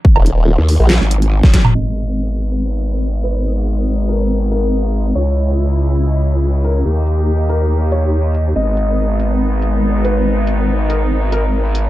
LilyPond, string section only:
\new Staff \with { instrumentName = "String section" } { \time 4/4 \key gis \minor \tempo 4 = 141 r1 | <gis b dis'>1~ | <gis b dis'>1 | <cis e'>1 |
<dis ais g'>1 | <gis b dis'>1~ | <gis b dis'>1 | }